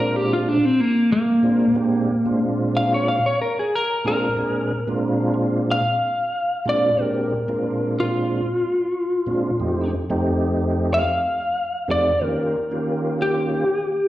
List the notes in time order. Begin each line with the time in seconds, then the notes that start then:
Already playing: A#2 G#3 C4 D4 F4
0.00 A#4
0.16 G4
0.33 F4
0.49 D4
0.65 C4
0.81 A#3
1.12 A#3
1.43 A#2 G#3 C4 D4 F4
1.75 A#2 G#3 C4 D4 G4
2.26 A#2 G#3 C4 D4 F4
2.77 F5
2.94 C#5
3.08 F5
3.26 C#5
3.42 A#4
3.59 G#4
3.75 A#4
4.04 A#2 G#3 C4 D4 F4 A#4
4.37 A#2 G#3 C4 D4 G#4
4.87 A#2 G#3 C4 D4 F4
5.71 F5
6.65 A#2 G#3 C4 D4 F4 D5
6.98 A#2 G#3 C4 D4 G4 A#4
7.48 A#2 G#3 C4 D4 F4
8.00 F4
9.26 A#2 G#3 C4 D4 F4
9.60 F2 A3 C4 D#4 G4
10.10 F2 A3 C4 D#4 G4
10.94 F5
11.88 F2 A3 C4 D#4 G4 D5
12.21 D#3 A#3 C#4 F4 G4 A#4
12.71 D#3 A#3 C#4 F4 G4
13.22 G4